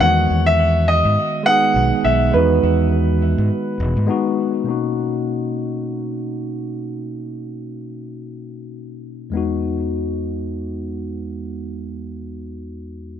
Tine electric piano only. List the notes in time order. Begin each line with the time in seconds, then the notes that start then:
0.00 D#3 G#3 B3
0.05 F#4
1.43 G#3 B3
1.48 D#4 G#4
2.31 G#3 B3
2.36 D#4 F#4
4.07 G#3 B3 D#4 F#4
4.64 B2 A#3 C#4
4.69 D#4 F#4
9.30 E2 G#3 B3
9.35 D#4 F#4